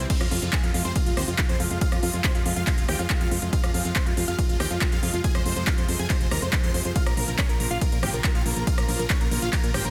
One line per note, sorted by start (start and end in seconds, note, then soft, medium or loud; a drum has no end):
0.10 0.25 C3 medium
0.10 0.25 F3 medium
0.10 0.25 G#3 medium
0.10 0.17 C4 medium
0.10 0.25 F4 medium
0.10 0.17 C5 loud
0.10 0.17 C6 loud
0.10 kick loud
0.10 closed hi-hat medium
0.10 ride medium
0.10 crash medium
0.21 0.28 F2 medium
0.21 0.28 F4 medium
0.21 0.28 F5 medium
0.21 cross-stick medium
0.21 closed hi-hat medium
0.31 0.38 F2 loud
0.31 0.46 C3 medium
0.31 0.46 F3 medium
0.31 0.46 G#3 medium
0.31 0.46 F4 medium
0.31 0.39 F4 medium
0.31 0.39 F5 medium
0.31 open hi-hat loud
0.42 0.49 F2 loud
0.42 0.49 F4 medium
0.42 0.49 F5 medium
0.42 closed hi-hat medium
0.53 0.60 C3 medium
0.53 0.60 F3 medium
0.53 0.60 G#3 medium
0.53 0.60 F4 medium
0.53 0.60 G#4 loud
0.53 0.60 G#5 medium
0.53 kick loud
0.53 clap loud
0.53 closed hi-hat medium
0.53 ride medium
0.63 0.70 F2 medium
0.63 0.78 C3 medium
0.63 0.79 F3 medium
0.63 0.79 G#3 loud
0.63 0.78 F4 medium
0.63 0.71 F4 medium
0.63 0.71 F5 medium
0.63 closed hi-hat medium
0.74 0.81 F2 loud
0.74 0.81 F4 medium
0.74 0.81 F5 medium
0.74 open hi-hat loud
0.85 0.92 F2 medium
0.85 0.92 C3 medium
0.85 0.92 F3 medium
0.85 0.92 G#3 medium
0.85 0.92 C4 medium
0.85 0.92 F4 loud
0.85 0.92 C5 medium
0.85 0.92 C6 medium
0.85 closed hi-hat medium
0.95 1.11 C3 medium
0.95 1.11 F3 medium
0.95 1.11 G#3 medium
0.95 1.11 F4 medium
0.95 1.03 F4 medium
0.95 1.03 F5 medium
0.95 kick loud
0.95 closed hi-hat medium
0.95 ride medium
1.06 1.13 F1 medium
1.06 1.14 F4 medium
1.06 1.14 F5 medium
1.06 closed hi-hat medium
1.17 1.24 D#2 loud
1.17 1.32 C3 medium
1.17 1.32 F3 medium
1.17 1.32 G#3 medium
1.17 1.24 C4 medium
1.17 1.32 F4 medium
1.17 1.24 C5 loud
1.17 1.24 C6 medium
1.17 cross-stick medium
1.17 open hi-hat loud
1.28 1.35 F2 medium
1.28 1.35 F4 medium
1.28 1.35 F5 medium
1.28 closed hi-hat medium
1.38 1.46 C3 medium
1.38 1.46 F3 medium
1.38 1.46 G#3 loud
1.38 1.46 F4 medium
1.38 1.46 F5 medium
1.38 kick loud
1.38 clap loud
1.38 closed hi-hat medium
1.38 ride medium
1.49 1.56 F2 medium
1.49 1.64 C3 medium
1.49 1.64 F3 medium
1.49 1.64 G#3 medium
1.49 1.56 C4 medium
1.49 1.64 F4 medium
1.49 1.56 C5 loud
1.49 1.56 C6 loud
1.49 closed hi-hat medium
1.60 1.67 F2 loud
1.60 1.67 F4 medium
1.60 1.67 F5 medium
1.60 open hi-hat loud
1.71 1.78 F2 loud
1.71 1.78 C3 medium
1.71 1.78 F3 medium
1.71 1.78 G#3 medium
1.71 1.78 F4 medium
1.71 1.78 F5 medium
1.71 closed hi-hat medium
1.81 1.96 C3 medium
1.81 1.96 F3 medium
1.81 1.96 G#3 medium
1.81 1.89 F4 medium
1.81 1.96 F4 medium
1.81 1.89 F5 loud
1.81 1.89 F6 loud
1.81 kick loud
1.81 closed hi-hat medium
1.81 ride medium
1.92 1.99 F2 medium
1.92 1.99 F4 medium
1.92 1.99 F5 medium
1.92 cross-stick medium
1.92 closed hi-hat medium
2.03 2.10 F2 loud
2.03 2.18 C3 medium
2.03 2.18 F3 medium
2.03 2.18 G#3 medium
2.03 2.10 F4 medium
2.03 2.18 F4 medium
2.03 2.10 F5 medium
2.03 open hi-hat loud
2.13 2.21 F2 loud
2.13 2.21 F4 medium
2.13 2.21 F5 medium
2.13 closed hi-hat medium
2.24 2.32 C3 medium
2.24 2.32 F3 medium
2.24 2.32 G#3 medium
2.24 2.31 C4 medium
2.24 2.32 F4 medium
2.24 2.31 C5 loud
2.24 2.31 C6 loud
2.24 kick loud
2.24 clap loud
2.24 closed hi-hat medium
2.24 ride medium
2.35 2.42 F2 medium
2.35 2.50 C3 medium
2.35 2.50 F3 medium
2.35 2.50 G#3 medium
2.35 2.42 F4 medium
2.35 2.50 F4 medium
2.35 2.42 F5 medium
2.35 closed hi-hat medium
2.46 2.53 F2 loud
2.46 2.53 F4 medium
2.46 2.53 F5 medium
2.46 open hi-hat loud
2.56 2.63 F2 medium
2.56 2.64 C3 medium
2.56 2.64 F3 medium
2.56 2.64 G#3 medium
2.56 2.64 F4 medium
2.56 2.64 F5 medium
2.56 2.64 F6 loud
2.56 closed hi-hat medium
2.67 2.82 C3 medium
2.67 2.82 F3 medium
2.67 2.82 G#3 medium
2.67 2.74 F4 medium
2.67 2.82 F4 medium
2.67 2.74 F5 medium
2.67 kick loud
2.67 clap medium
2.67 closed hi-hat medium
2.67 ride medium
2.78 2.85 F1 medium
2.78 2.85 F4 medium
2.78 2.85 F5 medium
2.78 closed hi-hat medium
2.88 2.96 D#2 loud
2.88 3.04 C3 medium
2.88 3.04 F3 medium
2.88 3.04 G#3 medium
2.88 3.04 F4 medium
2.88 2.96 G4 medium
2.88 2.96 G5 loud
2.88 2.96 G6 loud
2.88 cross-stick medium
2.88 open hi-hat loud
2.99 3.06 F2 medium
2.99 3.06 F4 medium
2.99 3.06 F5 medium
2.99 closed hi-hat medium
3.10 3.17 C3 loud
3.10 3.17 F3 loud
3.10 3.17 G#3 medium
3.10 3.17 F4 medium
3.10 3.17 F5 medium
3.10 kick loud
3.10 clap loud
3.10 closed hi-hat medium
3.10 ride medium
3.21 3.28 F2 medium
3.21 3.36 C3 medium
3.21 3.36 F3 medium
3.21 3.36 G#3 loud
3.21 3.28 F4 medium
3.21 3.36 F4 medium
3.21 3.28 F5 loud
3.21 3.28 F6 loud
3.21 closed hi-hat medium
3.31 3.38 F2 loud
3.31 3.39 F4 medium
3.31 3.39 F5 medium
3.31 open hi-hat loud
3.42 3.49 F2 loud
3.42 3.50 C3 loud
3.42 3.50 F3 medium
3.42 3.50 G#3 medium
3.42 3.49 F4 medium
3.42 3.50 F4 loud
3.42 3.49 F5 medium
3.42 closed hi-hat medium
3.53 3.68 C3 medium
3.53 3.68 F3 medium
3.53 3.68 G#3 medium
3.53 3.60 F4 medium
3.53 3.68 F4 medium
3.53 3.60 F5 loud
3.53 3.60 F6 loud
3.53 kick loud
3.53 closed hi-hat medium
3.53 ride medium
3.64 3.71 F2 medium
3.64 3.71 F4 medium
3.64 3.71 F5 medium
3.64 cross-stick medium
3.64 closed hi-hat medium
3.74 3.81 F2 loud
3.74 3.89 C3 medium
3.74 3.89 F3 medium
3.74 3.89 G#3 medium
3.74 3.89 F4 medium
3.74 3.81 F4 medium
3.74 3.81 F5 medium
3.74 open hi-hat loud
3.85 3.92 F2 medium
3.85 3.92 F4 medium
3.85 3.92 F5 medium
3.85 closed hi-hat medium
3.96 4.03 C3 medium
3.96 4.03 F3 medium
3.96 4.03 G#3 medium
3.96 4.03 C4 medium
3.96 4.03 F4 medium
3.96 4.03 C5 loud
3.96 4.03 C6 medium
3.96 kick loud
3.96 clap loud
3.96 closed hi-hat medium
3.96 ride medium
4.06 4.13 F2 medium
4.06 4.21 C3 medium
4.06 4.21 F3 medium
4.06 4.21 G#3 medium
4.06 4.21 F4 medium
4.06 4.14 F4 medium
4.06 4.14 F5 medium
4.06 closed hi-hat medium
4.17 4.24 F2 loud
4.17 4.24 F4 medium
4.17 4.24 F5 medium
4.17 open hi-hat loud
4.28 4.35 F2 medium
4.28 4.35 C3 medium
4.28 4.35 F3 medium
4.28 4.35 G#3 medium
4.28 4.35 F4 loud
4.28 4.35 F4 medium
4.28 4.35 F5 medium
4.28 4.35 F6 medium
4.28 closed hi-hat medium
4.38 4.54 C3 medium
4.38 4.54 F3 medium
4.38 4.54 G#3 loud
4.38 4.46 F4 medium
4.38 4.54 F4 medium
4.38 4.46 F5 medium
4.38 kick loud
4.38 closed hi-hat medium
4.38 ride medium
4.49 4.56 F1 medium
4.49 4.56 F4 medium
4.49 4.56 F5 medium
4.49 closed hi-hat soft
4.60 4.67 D#2 loud
4.60 4.75 C3 medium
4.60 4.75 F3 medium
4.60 4.75 G#3 medium
4.60 4.75 F4 medium
4.60 4.67 G4 medium
4.60 4.67 G5 loud
4.60 4.67 G6 loud
4.60 cross-stick medium
4.60 open hi-hat loud
4.71 4.78 F2 medium
4.71 4.78 F4 medium
4.71 4.78 F5 medium
4.71 closed hi-hat medium
4.81 4.89 C3 medium
4.81 4.89 F3 medium
4.81 4.89 G#3 loud
4.81 4.89 F4 medium
4.81 4.89 F5 medium
4.81 kick loud
4.81 clap loud
4.81 closed hi-hat medium
4.81 ride medium
4.92 4.99 F2 medium
4.92 5.07 C3 medium
4.92 5.07 F3 medium
4.92 5.07 G#3 medium
4.92 5.07 F4 loud
4.92 4.99 F4 medium
4.92 4.99 F5 loud
4.92 4.99 F6 medium
4.92 closed hi-hat medium
5.03 5.10 F2 loud
5.03 5.10 F4 medium
5.03 5.10 F5 medium
5.03 open hi-hat loud
5.13 5.20 F2 medium
5.13 5.21 C3 medium
5.13 5.21 F3 medium
5.13 5.21 G#3 medium
5.13 5.21 F4 medium
5.13 5.21 F5 medium
5.13 closed hi-hat medium
5.24 5.39 C3 medium
5.24 5.39 F3 medium
5.24 5.39 G#3 medium
5.24 5.39 F4 medium
5.24 5.31 G#4 medium
5.24 5.31 G#5 loud
5.24 5.31 G#6 loud
5.24 kick loud
5.24 closed hi-hat medium
5.24 ride medium
5.35 5.42 F2 medium
5.35 5.42 C5 medium
5.35 5.42 C6 medium
5.35 cross-stick medium
5.35 closed hi-hat medium
5.46 5.53 F2 loud
5.46 5.61 C3 medium
5.46 5.61 F3 medium
5.46 5.61 G#3 medium
5.46 5.61 F4 medium
5.46 5.53 C5 medium
5.46 5.53 C6 medium
5.46 open hi-hat loud
5.56 5.63 F2 medium
5.56 5.64 C5 medium
5.56 5.64 C6 medium
5.56 closed hi-hat medium
5.67 5.75 C3 medium
5.67 5.75 F3 medium
5.67 5.75 G#3 medium
5.67 5.75 F4 medium
5.67 5.74 F4 medium
5.67 5.74 F5 medium
5.67 5.74 F6 loud
5.67 kick loud
5.67 clap loud
5.67 closed hi-hat medium
5.67 ride medium
5.78 5.85 F2 medium
5.78 5.93 C3 medium
5.78 5.93 F3 medium
5.78 5.93 G#3 medium
5.78 5.93 F4 medium
5.78 5.85 C5 medium
5.78 5.85 C6 medium
5.78 closed hi-hat medium
5.88 5.96 F2 loud
5.88 5.96 C5 medium
5.88 5.96 C6 medium
5.88 open hi-hat loud
5.99 6.06 F2 medium
5.99 6.07 C3 medium
5.99 6.07 F3 medium
5.99 6.07 G#3 medium
5.99 6.07 F4 medium
5.99 6.06 G#4 medium
5.99 6.06 G#5 medium
5.99 6.06 G#6 medium
5.99 closed hi-hat medium
6.10 6.25 C3 medium
6.10 6.25 F3 medium
6.10 6.25 G#3 medium
6.10 6.25 F4 medium
6.10 6.17 C5 medium
6.10 6.17 C6 medium
6.10 kick loud
6.10 clap medium
6.10 closed hi-hat medium
6.10 ride medium
6.21 6.28 F1 medium
6.21 6.28 C5 medium
6.21 6.28 C6 medium
6.21 closed hi-hat medium
6.31 6.38 D#2 loud
6.31 6.46 C3 medium
6.31 6.46 F3 medium
6.31 6.46 G#3 medium
6.31 6.46 F4 medium
6.31 6.39 A#4 medium
6.31 6.39 A#5 loud
6.31 6.39 A#6 medium
6.31 cross-stick medium
6.31 open hi-hat loud
6.42 6.49 F2 medium
6.42 6.49 C5 medium
6.42 6.49 C6 medium
6.42 closed hi-hat medium
6.53 6.60 C3 medium
6.53 6.60 F3 medium
6.53 6.60 G#3 loud
6.53 6.60 F4 medium
6.53 6.60 C5 medium
6.53 6.60 C6 medium
6.53 kick loud
6.53 clap loud
6.53 closed hi-hat medium
6.53 ride medium
6.64 6.71 F2 medium
6.64 6.79 C3 medium
6.64 6.79 F3 medium
6.64 6.79 G#3 medium
6.64 6.79 F4 medium
6.64 6.71 C5 medium
6.64 6.71 C6 loud
6.64 6.71 C7 medium
6.64 closed hi-hat medium
6.74 6.81 F2 loud
6.74 6.81 C5 medium
6.74 6.81 C6 medium
6.74 open hi-hat loud
6.85 6.92 F2 medium
6.85 6.92 C3 medium
6.85 6.92 F3 medium
6.85 6.92 G#3 loud
6.85 6.92 F4 medium
6.85 6.92 C5 medium
6.85 6.92 C6 medium
6.85 closed hi-hat medium
6.96 7.11 C#3 medium
6.96 7.11 F3 medium
6.96 7.11 A#3 medium
6.96 7.03 F4 medium
6.96 7.11 F4 medium
6.96 7.03 F5 loud
6.96 7.03 F6 loud
6.96 kick loud
6.96 closed hi-hat medium
6.96 ride medium
7.06 7.13 A#1 medium
7.06 7.14 A#4 medium
7.06 7.14 A#5 medium
7.06 cross-stick medium
7.06 closed hi-hat medium
7.17 7.24 A#1 loud
7.17 7.32 C#3 medium
7.17 7.32 F3 medium
7.17 7.32 A#3 medium
7.17 7.32 F4 medium
7.17 7.24 A#4 medium
7.17 7.24 A#5 medium
7.17 open hi-hat loud
7.28 7.35 A#1 medium
7.28 7.35 A#4 medium
7.28 7.35 A#5 medium
7.28 closed hi-hat medium
7.38 7.46 C#3 medium
7.38 7.46 F3 medium
7.38 7.46 A#3 medium
7.38 7.46 C#4 medium
7.38 7.46 F4 medium
7.38 7.46 C#5 loud
7.38 7.46 C#6 loud
7.38 kick loud
7.38 clap loud
7.38 closed hi-hat medium
7.38 ride medium
7.49 7.56 A#1 medium
7.49 7.64 C#3 loud
7.49 7.64 F3 medium
7.49 7.64 A#3 medium
7.49 7.64 F4 medium
7.49 7.56 A#4 medium
7.49 7.57 A#5 medium
7.49 closed hi-hat medium
7.60 7.67 A#1 loud
7.60 7.67 A#4 medium
7.60 7.67 A#5 medium
7.60 open hi-hat loud
7.71 7.78 A#1 medium
7.71 7.78 C#3 medium
7.71 7.78 F3 medium
7.71 7.78 A#3 medium
7.71 7.78 F4 medium
7.71 7.78 F5 medium
7.71 7.78 F6 medium
7.71 closed hi-hat medium
7.81 7.96 C#3 medium
7.81 7.96 F3 medium
7.81 7.96 A#3 medium
7.81 7.96 F4 medium
7.81 7.89 A#4 medium
7.81 7.89 A#5 medium
7.81 kick loud
7.81 closed hi-hat medium
7.81 ride medium
7.92 7.99 A#2 medium
7.92 7.99 A#4 medium
7.92 7.99 A#5 medium
7.92 closed hi-hat medium
8.03 8.10 G#1 loud
8.03 8.18 C#3 medium
8.03 8.18 F3 medium
8.03 8.18 A#3 medium
8.03 8.18 F4 medium
8.03 8.10 G4 medium
8.03 8.10 G5 loud
8.03 8.10 G6 medium
8.03 cross-stick medium
8.03 open hi-hat loud
8.14 8.21 A#1 loud
8.14 8.21 A#4 medium
8.14 8.21 A#5 medium
8.14 closed hi-hat soft
8.24 8.32 C#3 loud
8.24 8.32 F3 medium
8.24 8.32 A#3 medium
8.24 8.32 F4 medium
8.24 8.31 A#4 medium
8.24 8.32 A#5 medium
8.24 kick loud
8.24 clap loud
8.24 closed hi-hat medium
8.24 ride medium
8.35 8.42 A#1 medium
8.35 8.50 C#3 medium
8.35 8.50 F3 medium
8.35 8.50 A#3 medium
8.35 8.42 F4 medium
8.35 8.50 F4 loud
8.35 8.42 F5 loud
8.35 8.42 F6 loud
8.35 closed hi-hat soft
8.46 8.53 A#1 loud
8.46 8.53 A#4 medium
8.46 8.53 A#5 medium
8.46 open hi-hat loud
8.56 8.63 A#1 medium
8.56 8.64 C#3 medium
8.56 8.64 F3 loud
8.56 8.64 A#3 medium
8.56 8.64 F4 medium
8.56 8.64 A#4 medium
8.56 8.64 A#5 medium
8.56 closed hi-hat medium
8.67 8.82 C#3 medium
8.67 8.82 F3 medium
8.67 8.82 A#3 medium
8.67 8.82 F4 medium
8.67 8.74 F4 medium
8.67 8.74 F5 loud
8.67 8.74 F6 loud
8.67 kick loud
8.67 closed hi-hat medium
8.67 ride medium
8.78 8.85 A#1 medium
8.78 8.85 A#4 medium
8.78 8.85 A#5 medium
8.78 cross-stick medium
8.78 closed hi-hat medium
8.89 8.96 A#1 loud
8.89 9.04 C#3 medium
8.89 9.04 F3 medium
8.89 9.04 A#3 medium
8.89 9.04 F4 medium
8.89 8.96 A#4 medium
8.89 8.96 A#5 medium
8.89 open hi-hat loud
8.99 9.06 A#1 medium
8.99 9.06 A#4 medium
8.99 9.06 A#5 medium
8.99 closed hi-hat medium
9.10 9.17 C#3 medium
9.10 9.17 F3 medium
9.10 9.17 A#3 medium
9.10 9.17 C#4 medium
9.10 9.17 F4 medium
9.10 9.17 C#5 loud
9.10 9.17 C#6 loud
9.10 kick loud
9.10 clap loud
9.10 closed hi-hat medium
9.10 ride medium
9.21 9.28 A#1 medium
9.21 9.36 C#3 medium
9.21 9.36 F3 loud
9.21 9.36 A#3 medium
9.21 9.36 F4 medium
9.21 9.28 A#4 medium
9.21 9.28 A#5 medium
9.21 closed hi-hat medium
9.31 9.38 A#1 loud
9.31 9.39 A#4 medium
9.31 9.39 A#5 medium
9.31 open hi-hat loud
9.42 9.49 A#1 medium
9.42 9.50 C#3 loud
9.42 9.50 F3 medium
9.42 9.50 A#3 medium
9.42 9.50 F4 medium
9.42 9.49 F4 medium
9.42 9.49 F5 loud
9.42 9.49 F6 medium
9.42 closed hi-hat medium
9.53 9.68 C#3 medium
9.53 9.68 F3 medium
9.53 9.68 A#3 medium
9.53 9.68 F4 medium
9.53 9.60 A#5 medium
9.53 kick loud
9.53 clap medium
9.53 closed hi-hat medium
9.53 ride medium
9.64 9.71 A#2 medium
9.64 9.71 A#4 medium
9.64 9.71 A#5 medium
9.64 closed hi-hat medium
9.74 9.81 G#1 loud
9.74 9.89 C#3 medium
9.74 9.89 F3 medium
9.74 9.89 A#3 medium
9.74 9.89 F4 medium
9.74 9.81 G4 medium
9.74 9.81 G5 loud
9.74 9.81 G6 medium
9.74 cross-stick medium
9.74 open hi-hat loud
9.85 9.90 A#1 medium
9.85 9.90 A#4 medium
9.85 9.90 A#5 medium
9.85 closed hi-hat medium